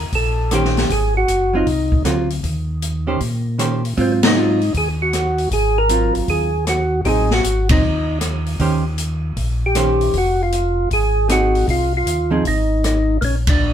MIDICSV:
0, 0, Header, 1, 5, 480
1, 0, Start_track
1, 0, Tempo, 385109
1, 1112, Time_signature, 4, 2, 24, 8
1, 17117, End_track
2, 0, Start_track
2, 0, Title_t, "Tonewheel organ"
2, 0, Program_c, 0, 16
2, 189, Note_on_c, 0, 69, 90
2, 664, Note_off_c, 0, 69, 0
2, 681, Note_on_c, 0, 67, 78
2, 1146, Note_on_c, 0, 68, 88
2, 1150, Note_off_c, 0, 67, 0
2, 1426, Note_off_c, 0, 68, 0
2, 1461, Note_on_c, 0, 66, 85
2, 1939, Note_off_c, 0, 66, 0
2, 1948, Note_on_c, 0, 63, 72
2, 2527, Note_off_c, 0, 63, 0
2, 5000, Note_on_c, 0, 60, 77
2, 5132, Note_off_c, 0, 60, 0
2, 5318, Note_on_c, 0, 63, 84
2, 5893, Note_off_c, 0, 63, 0
2, 5951, Note_on_c, 0, 68, 85
2, 6086, Note_off_c, 0, 68, 0
2, 6258, Note_on_c, 0, 66, 84
2, 6843, Note_off_c, 0, 66, 0
2, 6894, Note_on_c, 0, 68, 92
2, 7207, Note_on_c, 0, 70, 107
2, 7211, Note_off_c, 0, 68, 0
2, 7646, Note_off_c, 0, 70, 0
2, 7850, Note_on_c, 0, 68, 92
2, 8290, Note_off_c, 0, 68, 0
2, 8336, Note_on_c, 0, 66, 86
2, 8735, Note_off_c, 0, 66, 0
2, 8792, Note_on_c, 0, 67, 69
2, 8817, Note_off_c, 0, 67, 0
2, 8830, Note_on_c, 0, 68, 84
2, 9139, Note_off_c, 0, 68, 0
2, 9145, Note_on_c, 0, 66, 79
2, 9577, Note_off_c, 0, 66, 0
2, 9615, Note_on_c, 0, 63, 81
2, 10203, Note_off_c, 0, 63, 0
2, 12042, Note_on_c, 0, 67, 88
2, 12680, Note_off_c, 0, 67, 0
2, 12687, Note_on_c, 0, 66, 88
2, 12989, Note_off_c, 0, 66, 0
2, 12997, Note_on_c, 0, 65, 90
2, 13575, Note_off_c, 0, 65, 0
2, 13626, Note_on_c, 0, 68, 96
2, 14059, Note_off_c, 0, 68, 0
2, 14106, Note_on_c, 0, 66, 86
2, 14539, Note_off_c, 0, 66, 0
2, 14586, Note_on_c, 0, 65, 92
2, 14868, Note_off_c, 0, 65, 0
2, 14921, Note_on_c, 0, 65, 84
2, 15345, Note_off_c, 0, 65, 0
2, 15550, Note_on_c, 0, 63, 82
2, 16011, Note_off_c, 0, 63, 0
2, 16026, Note_on_c, 0, 63, 76
2, 16420, Note_off_c, 0, 63, 0
2, 16467, Note_on_c, 0, 58, 60
2, 16492, Note_off_c, 0, 58, 0
2, 16510, Note_on_c, 0, 61, 80
2, 16645, Note_off_c, 0, 61, 0
2, 16819, Note_on_c, 0, 62, 67
2, 17117, Note_off_c, 0, 62, 0
2, 17117, End_track
3, 0, Start_track
3, 0, Title_t, "Hollow-body jazz guitar"
3, 0, Program_c, 1, 26
3, 649, Note_on_c, 1, 51, 54
3, 655, Note_on_c, 1, 61, 56
3, 662, Note_on_c, 1, 67, 53
3, 662, Note_on_c, 1, 72, 53
3, 1120, Note_off_c, 1, 51, 0
3, 1124, Note_off_c, 1, 61, 0
3, 1127, Note_off_c, 1, 67, 0
3, 1127, Note_off_c, 1, 72, 0
3, 1912, Note_on_c, 1, 54, 55
3, 1928, Note_on_c, 1, 60, 56
3, 1934, Note_on_c, 1, 65, 64
3, 2057, Note_off_c, 1, 54, 0
3, 2065, Note_off_c, 1, 60, 0
3, 2068, Note_off_c, 1, 65, 0
3, 2551, Note_on_c, 1, 54, 48
3, 2559, Note_on_c, 1, 60, 54
3, 2570, Note_on_c, 1, 65, 53
3, 2837, Note_off_c, 1, 54, 0
3, 2841, Note_off_c, 1, 60, 0
3, 2847, Note_off_c, 1, 65, 0
3, 3825, Note_on_c, 1, 51, 57
3, 3830, Note_on_c, 1, 61, 52
3, 3836, Note_on_c, 1, 67, 60
3, 3843, Note_on_c, 1, 72, 57
3, 3973, Note_off_c, 1, 51, 0
3, 3976, Note_off_c, 1, 61, 0
3, 3979, Note_off_c, 1, 67, 0
3, 3982, Note_off_c, 1, 72, 0
3, 4466, Note_on_c, 1, 51, 43
3, 4474, Note_on_c, 1, 61, 49
3, 4476, Note_on_c, 1, 67, 44
3, 4486, Note_on_c, 1, 72, 46
3, 4755, Note_off_c, 1, 51, 0
3, 4759, Note_off_c, 1, 61, 0
3, 4760, Note_off_c, 1, 67, 0
3, 4765, Note_off_c, 1, 72, 0
3, 4952, Note_on_c, 1, 54, 48
3, 4953, Note_on_c, 1, 60, 61
3, 4964, Note_on_c, 1, 65, 56
3, 5238, Note_off_c, 1, 54, 0
3, 5238, Note_off_c, 1, 60, 0
3, 5244, Note_off_c, 1, 65, 0
3, 5425, Note_on_c, 1, 54, 52
3, 5440, Note_on_c, 1, 60, 46
3, 5448, Note_on_c, 1, 65, 50
3, 5715, Note_off_c, 1, 54, 0
3, 5722, Note_off_c, 1, 60, 0
3, 5726, Note_off_c, 1, 65, 0
3, 7343, Note_on_c, 1, 54, 50
3, 7355, Note_on_c, 1, 60, 52
3, 7362, Note_on_c, 1, 65, 53
3, 8083, Note_off_c, 1, 54, 0
3, 8089, Note_off_c, 1, 60, 0
3, 8093, Note_off_c, 1, 65, 0
3, 8784, Note_on_c, 1, 54, 49
3, 8795, Note_on_c, 1, 60, 55
3, 8804, Note_on_c, 1, 63, 62
3, 9075, Note_off_c, 1, 54, 0
3, 9081, Note_off_c, 1, 60, 0
3, 9086, Note_off_c, 1, 63, 0
3, 9600, Note_on_c, 1, 54, 52
3, 9601, Note_on_c, 1, 60, 62
3, 9612, Note_on_c, 1, 63, 64
3, 9743, Note_off_c, 1, 54, 0
3, 9743, Note_off_c, 1, 60, 0
3, 9749, Note_off_c, 1, 63, 0
3, 10715, Note_on_c, 1, 51, 56
3, 10731, Note_on_c, 1, 61, 56
3, 10733, Note_on_c, 1, 67, 62
3, 10735, Note_on_c, 1, 72, 61
3, 11002, Note_off_c, 1, 51, 0
3, 11010, Note_off_c, 1, 61, 0
3, 11011, Note_off_c, 1, 67, 0
3, 11012, Note_off_c, 1, 72, 0
3, 12163, Note_on_c, 1, 51, 53
3, 12168, Note_on_c, 1, 61, 55
3, 12170, Note_on_c, 1, 67, 58
3, 12176, Note_on_c, 1, 72, 61
3, 12640, Note_off_c, 1, 51, 0
3, 12643, Note_off_c, 1, 61, 0
3, 12644, Note_off_c, 1, 67, 0
3, 12647, Note_off_c, 1, 72, 0
3, 14069, Note_on_c, 1, 60, 49
3, 14077, Note_on_c, 1, 68, 61
3, 14078, Note_on_c, 1, 63, 49
3, 14807, Note_off_c, 1, 60, 0
3, 14811, Note_off_c, 1, 63, 0
3, 14811, Note_off_c, 1, 68, 0
3, 15337, Note_on_c, 1, 53, 61
3, 15345, Note_on_c, 1, 60, 54
3, 15348, Note_on_c, 1, 63, 61
3, 15355, Note_on_c, 1, 68, 58
3, 15492, Note_off_c, 1, 53, 0
3, 15496, Note_off_c, 1, 60, 0
3, 15497, Note_off_c, 1, 63, 0
3, 15501, Note_off_c, 1, 68, 0
3, 17117, End_track
4, 0, Start_track
4, 0, Title_t, "Tonewheel organ"
4, 0, Program_c, 2, 16
4, 158, Note_on_c, 2, 34, 74
4, 1067, Note_off_c, 2, 34, 0
4, 1117, Note_on_c, 2, 32, 75
4, 1561, Note_off_c, 2, 32, 0
4, 1593, Note_on_c, 2, 30, 65
4, 2039, Note_off_c, 2, 30, 0
4, 2078, Note_on_c, 2, 36, 75
4, 2522, Note_off_c, 2, 36, 0
4, 2555, Note_on_c, 2, 38, 68
4, 3000, Note_off_c, 2, 38, 0
4, 3036, Note_on_c, 2, 39, 75
4, 3946, Note_off_c, 2, 39, 0
4, 3994, Note_on_c, 2, 46, 67
4, 4905, Note_off_c, 2, 46, 0
4, 4957, Note_on_c, 2, 44, 73
4, 5867, Note_off_c, 2, 44, 0
4, 5914, Note_on_c, 2, 39, 73
4, 6826, Note_off_c, 2, 39, 0
4, 6873, Note_on_c, 2, 32, 75
4, 7621, Note_off_c, 2, 32, 0
4, 7668, Note_on_c, 2, 32, 36
4, 7750, Note_off_c, 2, 32, 0
4, 7828, Note_on_c, 2, 39, 75
4, 8744, Note_off_c, 2, 39, 0
4, 8791, Note_on_c, 2, 33, 82
4, 9240, Note_off_c, 2, 33, 0
4, 9270, Note_on_c, 2, 32, 72
4, 9720, Note_off_c, 2, 32, 0
4, 9755, Note_on_c, 2, 39, 76
4, 10668, Note_off_c, 2, 39, 0
4, 10712, Note_on_c, 2, 39, 78
4, 11627, Note_off_c, 2, 39, 0
4, 11676, Note_on_c, 2, 34, 75
4, 12589, Note_off_c, 2, 34, 0
4, 12638, Note_on_c, 2, 29, 77
4, 13550, Note_off_c, 2, 29, 0
4, 13594, Note_on_c, 2, 32, 72
4, 14507, Note_off_c, 2, 32, 0
4, 14557, Note_on_c, 2, 36, 81
4, 15003, Note_off_c, 2, 36, 0
4, 15035, Note_on_c, 2, 39, 67
4, 15482, Note_off_c, 2, 39, 0
4, 15519, Note_on_c, 2, 32, 72
4, 16428, Note_off_c, 2, 32, 0
4, 16477, Note_on_c, 2, 34, 75
4, 17117, Note_off_c, 2, 34, 0
4, 17117, End_track
5, 0, Start_track
5, 0, Title_t, "Drums"
5, 155, Note_on_c, 9, 46, 37
5, 156, Note_on_c, 9, 36, 31
5, 280, Note_off_c, 9, 46, 0
5, 281, Note_off_c, 9, 36, 0
5, 635, Note_on_c, 9, 42, 47
5, 637, Note_on_c, 9, 37, 54
5, 759, Note_off_c, 9, 42, 0
5, 762, Note_off_c, 9, 37, 0
5, 806, Note_on_c, 9, 38, 23
5, 930, Note_off_c, 9, 38, 0
5, 960, Note_on_c, 9, 46, 35
5, 965, Note_on_c, 9, 38, 38
5, 1084, Note_off_c, 9, 46, 0
5, 1089, Note_off_c, 9, 38, 0
5, 1118, Note_on_c, 9, 36, 32
5, 1124, Note_on_c, 9, 46, 44
5, 1243, Note_off_c, 9, 36, 0
5, 1249, Note_off_c, 9, 46, 0
5, 1597, Note_on_c, 9, 42, 49
5, 1722, Note_off_c, 9, 42, 0
5, 2077, Note_on_c, 9, 36, 31
5, 2077, Note_on_c, 9, 46, 39
5, 2201, Note_off_c, 9, 36, 0
5, 2201, Note_off_c, 9, 46, 0
5, 2393, Note_on_c, 9, 36, 51
5, 2518, Note_off_c, 9, 36, 0
5, 2553, Note_on_c, 9, 42, 46
5, 2555, Note_on_c, 9, 37, 55
5, 2677, Note_off_c, 9, 42, 0
5, 2680, Note_off_c, 9, 37, 0
5, 2871, Note_on_c, 9, 46, 35
5, 2996, Note_off_c, 9, 46, 0
5, 3035, Note_on_c, 9, 36, 30
5, 3037, Note_on_c, 9, 46, 40
5, 3160, Note_off_c, 9, 36, 0
5, 3161, Note_off_c, 9, 46, 0
5, 3516, Note_on_c, 9, 42, 47
5, 3641, Note_off_c, 9, 42, 0
5, 3994, Note_on_c, 9, 46, 41
5, 3995, Note_on_c, 9, 36, 29
5, 4119, Note_off_c, 9, 46, 0
5, 4120, Note_off_c, 9, 36, 0
5, 4477, Note_on_c, 9, 42, 48
5, 4479, Note_on_c, 9, 37, 52
5, 4601, Note_off_c, 9, 42, 0
5, 4604, Note_off_c, 9, 37, 0
5, 4795, Note_on_c, 9, 46, 38
5, 4920, Note_off_c, 9, 46, 0
5, 4952, Note_on_c, 9, 46, 39
5, 4955, Note_on_c, 9, 36, 31
5, 5077, Note_off_c, 9, 46, 0
5, 5079, Note_off_c, 9, 36, 0
5, 5271, Note_on_c, 9, 51, 55
5, 5273, Note_on_c, 9, 38, 72
5, 5395, Note_off_c, 9, 51, 0
5, 5398, Note_off_c, 9, 38, 0
5, 5751, Note_on_c, 9, 46, 33
5, 5875, Note_off_c, 9, 46, 0
5, 5912, Note_on_c, 9, 46, 40
5, 5913, Note_on_c, 9, 36, 31
5, 6037, Note_off_c, 9, 36, 0
5, 6037, Note_off_c, 9, 46, 0
5, 6395, Note_on_c, 9, 42, 48
5, 6398, Note_on_c, 9, 37, 52
5, 6520, Note_off_c, 9, 42, 0
5, 6522, Note_off_c, 9, 37, 0
5, 6707, Note_on_c, 9, 46, 35
5, 6832, Note_off_c, 9, 46, 0
5, 6870, Note_on_c, 9, 36, 32
5, 6872, Note_on_c, 9, 46, 44
5, 6994, Note_off_c, 9, 36, 0
5, 6997, Note_off_c, 9, 46, 0
5, 7344, Note_on_c, 9, 42, 50
5, 7469, Note_off_c, 9, 42, 0
5, 7662, Note_on_c, 9, 46, 36
5, 7786, Note_off_c, 9, 46, 0
5, 7828, Note_on_c, 9, 36, 29
5, 7828, Note_on_c, 9, 46, 36
5, 7953, Note_off_c, 9, 36, 0
5, 7953, Note_off_c, 9, 46, 0
5, 8310, Note_on_c, 9, 42, 49
5, 8312, Note_on_c, 9, 37, 56
5, 8434, Note_off_c, 9, 42, 0
5, 8437, Note_off_c, 9, 37, 0
5, 8786, Note_on_c, 9, 46, 44
5, 8790, Note_on_c, 9, 36, 33
5, 8911, Note_off_c, 9, 46, 0
5, 8914, Note_off_c, 9, 36, 0
5, 9108, Note_on_c, 9, 38, 35
5, 9233, Note_off_c, 9, 38, 0
5, 9276, Note_on_c, 9, 42, 50
5, 9401, Note_off_c, 9, 42, 0
5, 9586, Note_on_c, 9, 51, 68
5, 9592, Note_on_c, 9, 36, 73
5, 9711, Note_off_c, 9, 51, 0
5, 9716, Note_off_c, 9, 36, 0
5, 10229, Note_on_c, 9, 42, 48
5, 10232, Note_on_c, 9, 37, 53
5, 10354, Note_off_c, 9, 42, 0
5, 10357, Note_off_c, 9, 37, 0
5, 10549, Note_on_c, 9, 46, 35
5, 10673, Note_off_c, 9, 46, 0
5, 10713, Note_on_c, 9, 46, 43
5, 10716, Note_on_c, 9, 36, 33
5, 10837, Note_off_c, 9, 46, 0
5, 10840, Note_off_c, 9, 36, 0
5, 11189, Note_on_c, 9, 42, 49
5, 11314, Note_off_c, 9, 42, 0
5, 11674, Note_on_c, 9, 46, 38
5, 11675, Note_on_c, 9, 36, 28
5, 11799, Note_off_c, 9, 36, 0
5, 11799, Note_off_c, 9, 46, 0
5, 12152, Note_on_c, 9, 42, 49
5, 12154, Note_on_c, 9, 37, 57
5, 12276, Note_off_c, 9, 42, 0
5, 12279, Note_off_c, 9, 37, 0
5, 12474, Note_on_c, 9, 46, 37
5, 12598, Note_off_c, 9, 46, 0
5, 12632, Note_on_c, 9, 46, 42
5, 12635, Note_on_c, 9, 36, 32
5, 12757, Note_off_c, 9, 46, 0
5, 12760, Note_off_c, 9, 36, 0
5, 13116, Note_on_c, 9, 42, 45
5, 13241, Note_off_c, 9, 42, 0
5, 13597, Note_on_c, 9, 36, 28
5, 13597, Note_on_c, 9, 46, 38
5, 13721, Note_off_c, 9, 46, 0
5, 13722, Note_off_c, 9, 36, 0
5, 14075, Note_on_c, 9, 42, 49
5, 14078, Note_on_c, 9, 37, 58
5, 14200, Note_off_c, 9, 42, 0
5, 14202, Note_off_c, 9, 37, 0
5, 14395, Note_on_c, 9, 46, 34
5, 14520, Note_off_c, 9, 46, 0
5, 14558, Note_on_c, 9, 36, 32
5, 14564, Note_on_c, 9, 46, 42
5, 14683, Note_off_c, 9, 36, 0
5, 14689, Note_off_c, 9, 46, 0
5, 15041, Note_on_c, 9, 42, 51
5, 15165, Note_off_c, 9, 42, 0
5, 15518, Note_on_c, 9, 36, 30
5, 15518, Note_on_c, 9, 46, 40
5, 15642, Note_off_c, 9, 36, 0
5, 15643, Note_off_c, 9, 46, 0
5, 16003, Note_on_c, 9, 42, 48
5, 16006, Note_on_c, 9, 37, 56
5, 16128, Note_off_c, 9, 42, 0
5, 16130, Note_off_c, 9, 37, 0
5, 16476, Note_on_c, 9, 46, 44
5, 16477, Note_on_c, 9, 36, 31
5, 16600, Note_off_c, 9, 46, 0
5, 16601, Note_off_c, 9, 36, 0
5, 16789, Note_on_c, 9, 51, 64
5, 16793, Note_on_c, 9, 36, 73
5, 16914, Note_off_c, 9, 51, 0
5, 16918, Note_off_c, 9, 36, 0
5, 17117, End_track
0, 0, End_of_file